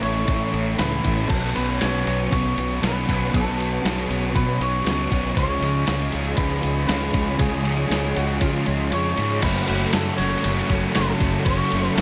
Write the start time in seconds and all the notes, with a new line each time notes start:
Already playing: A2 E3 A4 C#5 E5 B5
0.01 A1 E3 A3 C#4 E4 C#5, ride, tambourine
0.06 A3
0.25 A2 E3 A3, kick, ride
0.42 tambourine
0.51 A1 E3 A3, ride
0.55 tambourine
0.76 C#2 A2 E3 B4, snare, ride
0.81 A3 C#4 E4, tambourine
0.95 tambourine
1.03 A1 E3 A3 C#4 E4, kick, ride
1.07 A3, tambourine
1.28 B1 B2 A4 B4 F#5 C#6, kick, tambourine, crash
1.32 F#3 B3 C#4
1.53 B1 B3 C#4 B4, ride
1.58 F#3 B3
1.79 B2 F#3 C#5, snare, ride, tambourine
1.83 B1 B3 C#4
1.95 snare
2.04 B1 B3 C#4, ride, tambourine
2.09 F#3 B3
2.29 B1 B2 F#3 B3 C#5, kick, ride
2.34 tambourine
2.45 tambourine
2.56 B1 F#3 B3, ride, tambourine
2.70 tambourine
2.82 B1 B2 F#3 B3 B4, snare, ride, tambourine
2.86 C#4
3.08 B1 F#3 B3 C#4, kick, ride, tambourine
3.32 B1 B2 F#3 B3 C#4 A4, kick, ride, tambourine
3.47 tambourine
3.57 F#3 B3 C#4, ride
3.83 B1 B2 F#3 B3 C#4, snare, ride, tambourine
3.98 tambourine
4.04 G#4
4.09 B1 F#3 B3 C#4, ride, tambourine
4.33 B2 F#3 B3 B4, kick, ride, tambourine
4.49 tambourine
4.58 B1 F#3 B3, ride, tambourine
4.63 C#5
4.86 C#2 B2 F#3 B3 C#4, snare, ride, tambourine
5.11 B1 F#3 B3 C#4, kick, ride, tambourine
5.35 C#2 C#3 F3 G#3 C#4 G#4 C#5 F5 C#6, kick, ride, tambourine
5.61 C#2 F3 G#3 C#4, ride
5.87 C#2 C#3 F3 G#3 C#4, snare, ride, tambourine
6.00 snare, tambourine
6.11 C#2 F3 G#3 C#4, ride
6.36 C#2 C#3 G#3 B4, kick, ride, tambourine
6.40 C#4
6.51 tambourine
6.63 C#2 G#3 C#4, ride, tambourine
6.76 tambourine
6.86 C#2 C#3 F3 G#3 C#4 B4, snare, ride, tambourine
7.13 C#2 F3 G#3 C#4, kick, ride, tambourine
7.38 C#2 C#3 F3 G#3 G#4, kick, ride, tambourine
7.43 C#4
7.53 tambourine
7.65 F3 G#3 C#4, ride
7.79 tambourine
7.87 C#2 G#4
7.91 C#3 F3 G#3 C#4, snare, ride, tambourine
8.05 snare
8.16 C#2 F3 G#3 C#4 F#4, ride, tambourine
8.30 tambourine
8.40 C#3 G#3 C#4 F4, kick, ride
8.66 C#2 G#3 C#4, ride
8.80 tambourine
8.92 F2 C#3 F3 G#3 C#4 C#5, ride, tambourine
9.05 tambourine
9.17 G#2 F3 G#3 C#4, ride, tambourine
9.30 tambourine
9.42 F#1 F#2 C#3 F#3 A3 C#4 F#4 A4 B4 C#5 F#5 C#6, kick, crash, ride
9.68 F#1 A3 C#4 F#4 B4, ride, tambourine
9.93 F#2 F#3 A3 C#4 F#4 A4, snare, ride, tambourine
10.17 F#1 F#3 C#4 F#4 C#5, ride, tambourine
10.21 C#3 F#3 A3
10.43 F#1 F#2 C#3 F#3 A3 C#4, ride, tambourine
10.47 F#4
10.69 F#1 C#3 F#3 A3 C#4 F#4, kick, snare, ride
10.93 F#2 C#3 F#3 A3 C#4 F#4 A4, snare, ride, tambourine
10.97 F#1
11.19 F#1 C#3 F#3 C#4 F#4, kick, ride, tambourine
11.23 A3
11.45 F#1 F#2 C#3 F#3 A3 C#4 C#5 E5, kick, ride
11.49 F#4
11.70 F#1 C#4 F#4, ride, tambourine
11.75 A3
11.95 F#1 F#3 A3 B4, snare, ride, tambourine